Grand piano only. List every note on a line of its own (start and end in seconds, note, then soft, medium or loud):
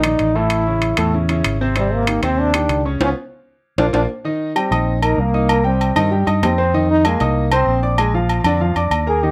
0.04 0.30 D#3 medium
0.04 0.30 D#4 medium
0.04 0.30 D5 medium
0.35 0.61 A2 medium
0.35 0.61 A3 medium
0.35 0.61 A4 medium
0.67 0.92 C#3 medium
0.67 0.92 C#4 medium
0.67 0.93 E4 medium
0.98 1.10 A2 medium
0.98 1.11 A3 medium
0.98 1.11 A4 medium
1.14 1.26 C#3 medium
1.14 1.27 C#4 medium
1.14 1.27 E4 medium
1.29 1.55 C#3 medium
1.29 1.55 C#4 medium
1.29 1.55 E4 medium
1.61 1.73 C3 medium
1.61 1.74 C4 medium
1.61 1.74 C5 medium
1.76 2.02 C3 medium
1.76 2.02 C4 medium
1.76 2.02 C5 medium
2.08 2.20 D#3 medium
2.08 2.20 D#4 medium
2.08 2.20 G4 medium
2.23 2.48 C3 medium
2.23 2.49 C4 medium
2.23 2.49 C5 loud
2.54 2.79 D#3 medium
2.54 2.80 D4 medium
2.54 2.80 G4 medium
2.85 2.98 C#3 medium
2.85 2.98 C#4 medium
2.85 2.98 C#5 medium
3.01 3.11 B3 loud
3.01 3.11 C#4 medium
3.01 3.11 F4 medium
3.78 3.88 A#3 loud
3.78 3.88 D4 medium
3.78 3.88 F4 loud
3.93 4.03 A#3 loud
3.93 4.04 D4 loud
3.93 4.04 F4 medium
4.24 4.50 D#3 medium
4.24 4.51 D#4 medium
4.24 4.51 D#5 medium
4.55 4.69 G3 medium
4.55 4.69 G4 medium
4.55 4.69 G5 medium
4.71 4.97 D#4 medium
4.71 4.97 D#5 medium
4.71 4.98 D#6 medium
5.02 5.28 A#3 medium
5.02 5.28 A#4 medium
5.02 5.29 A#5 medium
5.34 5.47 D#4 medium
5.34 5.47 D#5 medium
5.34 5.47 D#6 medium
5.48 5.62 A#3 medium
5.48 5.62 A#4 medium
5.48 5.62 A#5 medium
5.64 5.90 G3 medium
5.64 5.90 G4 medium
5.64 5.90 G5 medium
5.96 6.09 D#3 loud
5.96 6.09 D#4 medium
5.96 6.09 D#5 loud
6.11 6.24 G3 medium
6.11 6.25 G4 medium
6.11 6.25 G5 medium
6.26 6.52 D#4 medium
6.26 6.53 D#5 medium
6.26 6.53 D#6 medium
6.58 6.71 C4 medium
6.58 6.71 C5 medium
6.58 6.71 C6 medium
6.74 6.99 D#3 medium
6.74 7.00 D#4 medium
6.74 7.00 D#5 medium
7.05 7.18 G#3 medium
7.05 7.18 G#4 medium
7.05 7.19 G#5 medium
7.21 7.46 D#4 medium
7.21 7.46 D#5 medium
7.21 7.47 D#6 medium
7.52 7.78 C4 medium
7.52 7.78 C5 medium
7.52 7.78 C6 medium
7.83 7.96 D4 medium
7.83 7.96 D5 medium
7.83 7.96 D6 medium
7.99 8.11 G#3 medium
7.99 8.12 G#4 medium
7.99 8.12 G#5 medium
8.14 8.39 F3 medium
8.14 8.40 F4 medium
8.14 8.40 F5 medium
8.46 8.58 D3 loud
8.46 8.58 D4 loud
8.46 8.59 D5 loud
8.60 8.73 F3 medium
8.60 8.74 F4 medium
8.60 8.74 F5 medium
8.76 9.02 D4 medium
8.76 9.02 D5 medium
8.76 9.02 D6 medium
9.06 9.20 A#3 medium
9.06 9.20 A#4 medium
9.06 9.20 A#5 medium
9.23 9.31 D#3 medium
9.23 9.31 D#4 medium
9.23 9.31 D#5 medium